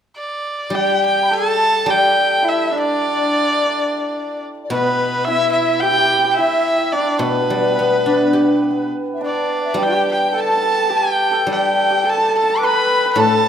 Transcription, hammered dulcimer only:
0.75 1.87 G4 medium
1.31 4.24 A4 medium
1.88 5.02 G4 medium
2.42 5.27 E4 medium
2.72 6.46 D4 medium
4.70 7.25 B3 medium
5.27 6.38 E4 medium
5.84 5.91 G4 medium
5.92 5.97 G4 medium
5.97 6.04 G4 medium
6.04 6.12 G4 medium
6.12 6.19 G4 medium
6.19 6.24 G4 medium
6.24 9.38 G4 medium
6.38 9.86 E4 medium
6.93 9.20 D4 medium
7.25 7.31 B3 medium
7.31 7.40 B3 soft
7.40 7.47 B3 medium
7.47 7.52 B3 soft
7.53 7.61 B3 soft
7.61 7.69 B3 soft
7.69 7.74 B3 soft
7.74 7.82 B3 soft
7.83 7.89 B3 soft
7.89 7.97 B3 soft
7.98 8.06 B3 soft
8.07 8.10 B3 soft
8.07 8.19 B3 soft
8.19 8.26 B3 soft
8.27 8.34 B3 soft
8.34 8.39 B3 soft
8.39 8.47 B3 soft
8.48 8.56 B3 soft
8.56 8.64 B3 soft
8.64 8.70 B3 soft
8.71 12.84 B3 soft
9.21 12.94 D4 medium
9.77 10.90 G4 medium
10.32 10.43 A4 medium
10.43 10.51 A4 medium
10.51 10.56 A4 medium
10.57 10.62 A4 medium
10.63 10.69 A4 medium
10.69 10.77 A4 soft
10.78 11.31 A4 medium
10.90 11.48 G4 medium
11.31 12.03 A4 medium
11.48 11.90 G4 medium
11.90 13.48 G4 medium
12.04 12.12 A4 medium
12.12 12.17 A4 medium
12.18 12.28 A4 medium
12.29 12.35 A4 medium
12.35 12.43 A4 medium
12.43 12.49 A4 medium
12.50 13.19 A4 medium
12.63 13.05 B4 medium
13.06 13.48 B4 medium
13.20 13.48 A4 medium

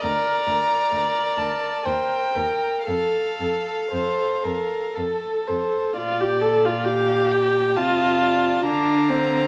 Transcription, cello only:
0.03 0.11 D2 medium
0.48 0.56 D2 medium
0.93 1.01 D2 soft
1.38 1.46 D2 soft
1.86 1.94 D#2 soft
2.36 2.44 D#2 soft
2.88 2.96 F2 soft
3.40 3.48 F2 soft
3.92 4.00 F2 soft
4.45 4.53 F2 soft
4.97 5.05 F2 soft
5.49 5.57 F2 soft
5.98 7.77 A#2 medium
7.76 8.65 C3 medium
8.65 9.47 D3 medium

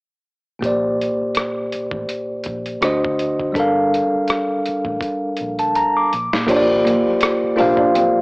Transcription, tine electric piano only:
0.59 2.76 A#2 medium
0.59 2.77 A#3 medium
0.59 2.78 G4 medium
0.65 2.79 C5 soft
0.65 2.80 D5 medium
2.81 3.55 D3 medium
2.81 3.53 D4 medium
2.81 3.56 F#4 medium
2.81 3.56 C5 medium
2.81 3.57 D#5 medium
3.52 6.06 G3 medium
3.52 6.07 D4 medium
3.52 6.08 A4 medium
3.58 6.09 A#4 medium
3.58 6.10 F5 medium
5.59 5.74 A5 medium
5.76 5.95 A#5 medium
5.97 6.31 D6 medium
6.47 7.47 A#3 medium
6.47 7.48 F4 medium
6.47 7.48 G4 medium
6.47 7.49 C5 medium
6.47 6.56 C#5 medium
6.57 7.52 D5 medium
7.56 8.22 A#3 medium
7.56 8.22 F4 medium
7.56 8.22 G4 medium
7.56 8.22 C5 medium
7.60 8.22 F5 medium

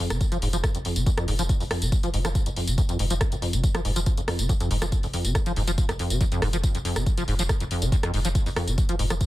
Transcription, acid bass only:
0.00 0.12 F2 medium
0.10 0.19 C3 loud
0.32 0.38 F3 loud
0.42 0.48 G#2 medium
0.53 0.57 F3 loud
0.75 0.78 F2 medium
0.85 0.98 F2 medium
0.96 1.05 C3 loud
1.07 1.10 F2 loud
1.18 1.26 F2 loud
1.28 1.34 G#2 medium
1.39 1.42 F3 loud
1.60 1.64 F2 medium
1.71 1.83 F2 medium
1.82 1.90 C3 loud
2.03 2.09 F3 loud
2.14 2.20 G#2 medium
2.25 2.28 F3 loud
2.46 2.50 F2 medium
2.56 2.69 F2 medium
2.68 2.76 C3 loud
2.78 2.82 F2 loud
2.89 2.97 F2 loud
2.99 3.05 G#2 medium
3.10 3.14 F3 loud
3.32 3.35 F2 medium
3.42 3.55 F2 medium
3.53 3.62 C3 loud
3.75 3.80 F3 loud
3.85 3.91 G#2 medium
3.96 4.00 F3 loud
4.18 4.21 F2 medium
4.28 4.41 F2 medium
4.39 4.48 C3 loud
4.49 4.53 F2 loud
4.60 4.69 F2 loud
4.71 4.77 G#2 medium
4.82 4.85 F3 loud
5.03 5.07 F2 medium
5.14 5.26 F2 medium
5.25 5.33 C3 loud
5.46 5.52 F3 loud
5.56 5.63 G#2 medium
5.68 5.71 F3 loud
5.89 5.92 F2 medium
5.99 6.12 F2 medium
6.10 6.19 C3 loud
6.21 6.24 F2 loud
6.32 6.40 F2 loud
6.42 6.48 G#2 medium
6.53 6.57 F3 loud
6.75 6.78 F2 medium
6.85 6.98 F2 medium
6.96 7.05 C3 loud
7.18 7.23 F3 loud
7.28 7.34 G#2 medium
7.39 7.42 F3 loud
7.60 7.64 F2 medium
7.71 7.83 F2 medium
7.82 7.90 C3 loud
7.92 7.96 F2 loud
8.03 8.12 F2 loud
8.14 8.20 G#2 medium
8.25 8.28 F3 loud
8.46 8.50 F2 medium
8.56 8.69 F2 medium
8.68 8.76 C3 loud
8.89 8.95 F3 loud
8.99 9.05 G#2 medium
9.10 9.14 F3 loud

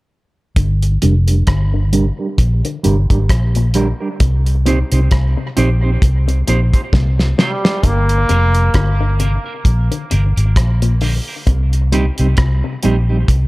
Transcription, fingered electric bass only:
0.57 0.96 G1 loud
1.03 1.42 F1 medium
1.48 2.09 G1 medium
2.39 2.61 A#1 medium
2.85 3.07 G1 medium
3.10 3.27 G#1 medium
3.30 3.91 A#1 medium
4.21 4.82 C2 loud
4.92 5.09 C2 medium
5.12 5.34 C2 loud
5.57 5.96 A#1 medium
6.02 6.41 C2 medium
6.48 6.70 A#1 medium
6.93 7.32 C2 medium
7.84 8.23 G1 loud
8.30 8.69 F1 medium
8.75 9.36 G1 medium
9.65 9.88 A#1 medium
10.12 10.34 G1 medium
10.37 10.54 G#1 medium
10.57 11.18 A#1 medium
11.47 12.09 C2 loud
12.19 12.36 C2 medium
12.38 12.61 C2 loud
12.85 13.24 A#1 medium
13.29 13.48 C2 medium

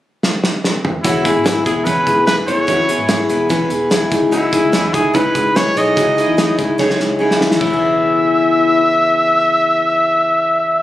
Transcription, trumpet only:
1.03 1.61 E4 medium
1.65 1.86 G#4 medium
1.85 2.26 B4 medium
2.27 2.36 B4 loud
2.47 3.25 C#5 loud
4.32 4.95 E4 medium
4.94 5.17 G#4 medium
5.15 5.58 B4 medium
5.56 5.79 C#5 loud
5.78 6.59 D#5 medium
7.60 10.82 E5 loud

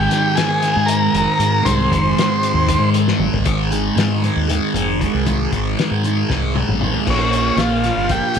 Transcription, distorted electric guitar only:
0.00 1.63 G#2 medium
0.00 1.64 D#3 loud
0.00 1.66 G#3 loud
1.63 3.43 G#2 medium
1.63 3.44 D#3 loud
1.63 3.45 G#3 loud
3.45 3.96 G#2 medium
3.45 3.73 D#3 medium
3.45 3.71 G#3 loud
3.72 3.97 D#3 medium
3.72 3.99 G#3 medium
3.97 4.25 G#2 medium
3.97 4.24 D#3 medium
3.97 4.22 G#3 medium
4.23 4.47 G#2 medium
4.23 4.49 D#3 medium
4.23 4.50 G#3 medium
4.48 4.98 G#2 medium
4.48 4.75 D#3 medium
4.48 4.73 G#3 medium
4.74 5.00 D#3 medium
4.74 5.02 G#3 medium
5.00 5.24 G#2 medium
5.00 5.26 D#3 medium
5.00 5.28 G#3 loud
5.26 5.76 G#2 medium
5.26 5.55 D#3 loud
5.26 5.51 G#3 loud
5.52 5.78 D#3 medium
5.52 5.79 G#3 medium
5.78 6.06 G#2 medium
5.78 6.05 D#3 medium
5.78 6.03 G#3 medium
6.04 6.28 G#2 medium
6.04 6.29 D#3 medium
6.04 6.31 G#3 medium
6.29 6.80 G#2 medium
6.29 6.57 D#3 medium
6.29 6.54 G#3 medium
6.55 6.81 D#3 medium
6.55 6.82 G#3 medium
6.81 7.05 G#2 medium
6.81 7.06 D#3 medium
6.81 7.06 G#3 medium
7.06 8.34 A#2 medium
7.06 8.35 F3 medium
7.06 8.35 A#3 medium
8.36 8.39 A#3 medium

